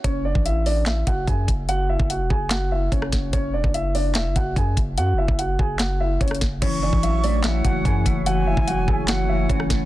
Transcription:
0.04 F#1 C#4 C#5, kick, closed hi-hat
0.25 D4 D5
0.35 A1, kick
0.45 E4 E5, closed hi-hat
0.66 D4 D5, open hi-hat
0.86 E4 E5, snare, clap, closed hi-hat
1.07 F#1 F#4 F#5, kick, closed hi-hat
1.27 F#2 G#4 G#5, kick, closed hi-hat
1.48 F#1, kick, closed hi-hat
1.69 F#4 F#5, closed hi-hat
1.89 E4 E5
2.00 F#1, kick
2.10 F#4 F#5, closed hi-hat
2.20 E1
2.30 F#1 G#4 G#5, kick
2.51 F#4 F#5, snare, clap, closed hi-hat
2.72 E4 E5
2.92 F#1 C#4 C#5, kick, closed hi-hat
3.02 cross-stick
3.12 F#1, kick, snare, closed hi-hat
3.33 F#1 C#4 C#5, kick, closed hi-hat
3.54 E1 D4 D5
3.64 F#1, kick
3.74 E4 E5, closed hi-hat
3.95 D4 D5, open hi-hat
4.15 E1 E4 E5, snare, clap, closed hi-hat
4.26 F#1
4.36 F#1 F#4 F#5, kick, closed hi-hat
4.56 F#2 G#4 G#5, kick, closed hi-hat
4.77 F#1, kick, closed hi-hat
4.97 F#2 F#4 F#5, closed hi-hat
5.13 F#1
5.18 E4 E5
5.28 F#1, kick
5.39 F#4 F#5, closed hi-hat
5.59 F#1 G#4 G#5, kick
5.79 F#4 F#5, snare, clap, closed hi-hat
6.00 E4 E5
6.21 F#1 C#4 C#5, kick, closed hi-hat
6.28 cross-stick, closed hi-hat
6.35 closed hi-hat
6.41 F#1, kick, snare, closed hi-hat
6.62 F#1 E3 A3 C#4 E4 F#4 C#5 C#6, kick, closed hi-hat, crash
6.83 E3 D4 D5
6.93 A1, kick
7.03 F#3 E4 E5, closed hi-hat
7.23 A3 D4 D5, open hi-hat
7.44 E3 E4 E5 F#5, snare, clap, closed hi-hat
7.64 F#1 E3 F#4 F#5, kick, closed hi-hat
7.85 F#2 E3 G#4 G#5, kick, closed hi-hat
8.06 F#1 A3, kick, closed hi-hat
8.26 E3 F#4 F#5 G#5, closed hi-hat
8.47 E3 E4 E5
8.57 F#1, kick
8.67 F#3 F#4 F#5, closed hi-hat
8.78 E1
8.88 F#1 A3 G#4 G#5, kick
9.08 E3 F#4 F#5, snare, clap, closed hi-hat
9.29 E3 E4 E5
9.49 F#1 E3 C#4 C#5, kick, closed hi-hat
9.60 cross-stick
9.70 F#1 A3, kick, snare, closed hi-hat

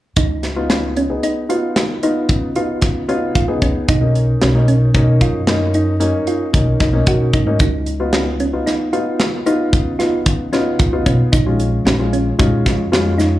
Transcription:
0.16 C#2 D#4, kick, closed hi-hat
0.43 snare, closed hi-hat
0.56 B3 D#4 F4
0.70 C#4, snare, closed hi-hat
0.97 C#4, closed hi-hat
1.09 B3 D#4 G#4
1.23 D#4, closed hi-hat
1.49 B3 D#4 F4, closed hi-hat
1.76 snare, closed hi-hat
2.03 B3 D#4 F4, closed hi-hat
2.29 C#3, kick, closed hi-hat
2.55 B3 D#4 F4, closed hi-hat
2.82 C#3, kick, snare, closed hi-hat
3.08 B3 C#4 D#4 F4, closed hi-hat
3.35 C#2 F4, kick, closed hi-hat
3.48 B3 D#4 G#4
3.62 C#2 C#4, kick, closed hi-hat
3.88 B1 D#4, kick, closed hi-hat
4.01 A#3 C#4 D#4
4.15 closed hi-hat
4.42 B1 C#4, snare, closed hi-hat
4.54 A#3 C#4 D#4
4.68 C#4, closed hi-hat
4.94 B2 A#3 C#4 D#4, kick, closed hi-hat
5.21 F#2 F4, kick, closed hi-hat
5.47 A#3 C#4 D#4, snare, closed hi-hat
5.74 D#4, closed hi-hat
6.00 A#3 C#4 D#4, closed hi-hat
6.27 F4, closed hi-hat
6.53 B1 A#3 C#4 D#4, kick, closed hi-hat
6.80 B1 D#4, kick, snare, closed hi-hat
6.93 A#3 C#4 D#4
7.06 B1 F#4, kick, closed hi-hat
7.33 G#2 D#4, kick, closed hi-hat
7.47 A#3 C#4 D#4
7.59 C#2 D#4, kick, closed hi-hat, shaker
7.86 closed hi-hat, shaker
8.00 B3 D#4 F4
8.13 C#4, snare, closed hi-hat
8.40 C#4, closed hi-hat
8.53 B3 D#4 F4
8.67 D#4, snare, closed hi-hat
8.93 B3 D#4 F4, closed hi-hat
9.20 snare, closed hi-hat
9.46 B3 D#4 F4, closed hi-hat, shaker
9.73 C#3, kick, closed hi-hat
9.99 B3 D#4 F4, snare, closed hi-hat, shaker
10.26 C#3, kick, closed hi-hat
10.53 B3 C#4 D#4 F4, snare, closed hi-hat
10.79 C#2 F4, kick, closed hi-hat
10.93 B3 D#4 F4
11.06 B1 C#4, kick, closed hi-hat, shaker
11.32 A#1 D#4, kick, closed hi-hat, shaker
11.46 G#3 C#4 F4
11.60 closed hi-hat, shaker
11.85 A#1 C#4, snare, closed hi-hat
11.99 G#3 C#4 F4
12.13 C#4, closed hi-hat
12.39 A#2 G#3 C#4 D#4 F4, kick, closed hi-hat
12.66 F2 F4, kick, snare, closed hi-hat
12.92 G#3 C#4 F4, snare, closed hi-hat
13.18 D#4, snare, closed hi-hat, shaker

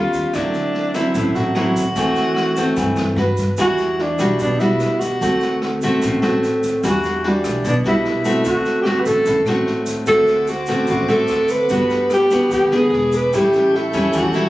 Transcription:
Already playing: D#2 G3 C#4 F4
0.13 D#2, kick, snare, shaker
0.34 D2 D3 F#3 C4 D4 E4, kick, cross-stick, snare, shaker
0.54 snare, shaker
0.74 snare
0.94 F#3 C4 E4, kick, cross-stick, snare, shaker
1.14 A1 A2, kick, snare, shaker
1.34 A1 F#4, snare, shaker
1.55 F#3 C4 E4 F#4, cross-stick, snare
1.75 D2, kick, snare, shaker
1.95 E2 E3 A3 C4, kick, snare, shaker
2.15 snare, shaker
2.36 cross-stick, snare
2.56 A3 C4, kick, snare, shaker
2.76 G2 E3, kick, snare, shaker
2.96 G2, cross-stick, snare, shaker
3.16 G2 D4 F#4 B4, snare
3.37 G2, kick, snare, shaker
3.57 E2 E3 G3 D4 F#4, kick, cross-stick, snare, shaker
3.78 snare, shaker
3.99 D4, snare
4.19 B1 G3 D4 F#4, kick, cross-stick, snare, shaker
4.39 B1 B2 D4, kick, snare, shaker
4.59 B1 G3 D4 E4 F#4, snare, shaker
4.80 cross-stick, snare, shaker
5.00 F#4, kick, snare, shaker
5.21 D2 D3 A3 C4 F#4, kick, snare, shaker
5.40 snare, shaker
5.62 cross-stick, snare
5.82 A1 A3 C4 F#4, kick, snare, shaker
6.02 A1 A2, kick, snare, shaker
6.22 A1 A3 C4 F#4, cross-stick, snare, shaker
6.43 snare, shaker
6.63 kick, snare, shaker
6.83 E2 E3 G3 D4 F#4, kick, cross-stick, snare, shaker
6.90 F#4
7.03 snare, shaker
7.24 G3 D4 F#4, snare
7.29 D4
7.44 B1, kick, cross-stick, snare, shaker
7.64 B1 B2, kick, snare, shaker
7.69 D4
7.84 B1 G3 D4 E4 F#4, snare, shaker
8.05 cross-stick, snare
8.25 A3 C4 F#4, kick, snare, shaker
8.44 D2 D3 F#4, kick, snare, shaker
8.65 snare, shaker
8.82 A3 G4, cross-stick, snare
8.87 C4 F#4
9.00 B4
9.06 A1 A4, kick, snare, shaker
9.25 A1 A2, kick, snare, shaker
9.45 A1 A3 C4 F#4, cross-stick, snare, shaker
9.67 snare
9.86 kick, snare, shaker
10.06 D2 D3 A3 C4 F#4 A4 C5 F#5 D6, kick, cross-stick, snare, shaker
10.27 snare, shaker
10.47 F#4, snare, shaker
10.66 A1 A3 C4 F#4, kick, cross-stick, snare, shaker
10.87 A1 A2, kick, snare, shaker
10.91 F#4
11.08 A1 A3 C4 F#4 A4, snare, shaker
11.28 D2, cross-stick, snare, shaker
11.48 B4, kick, snare, shaker
11.69 G1 G3 B3 D4 F#4 B4 B5, kick, snare, shaker
11.90 snare, shaker
12.10 G4, cross-stick, snare, shaker
12.31 D2 B3 D4 F#4, kick, snare, shaker
12.51 D2 D3 G4, kick, snare, shaker
12.70 D2 B3 D4 G#4, cross-stick, snare, shaker
12.75 G#4
12.90 E1 E5 D6, snare
12.94 G#4
13.12 B4, kick, snare, shaker
13.32 A1 A2 G3 C#4 E4 G4 A4 C#6 G6, kick, cross-stick, snare, shaker
13.53 snare, shaker
13.75 E4, snare
13.93 E2 G3 C#4 E4, kick, cross-stick, snare, shaker
14.13 E2 E3, kick, snare, shaker
14.19 F#4
14.33 E2 G3 C#4 E4, snare, shaker

